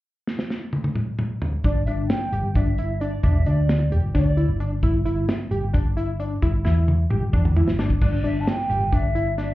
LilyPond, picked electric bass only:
\new Staff \with { instrumentName = "Picked electric bass" } { \clef bass \time 7/8 \key e \minor \tempo 4 = 132 r2. r8 | g,,8 g,,8 r8 g,,16 g,,16 g,,4. | e,,8 d,4 e,,16 g,,16 d,8. g,,8. | g,,8 g,,8 r8 g,,16 g,,16 g,,4. |
g,,8 e,4 g,,16 g,,16 e,8. g,,8. | g,,8 g,,8 r8 g,,16 g,,16 g,,4. | }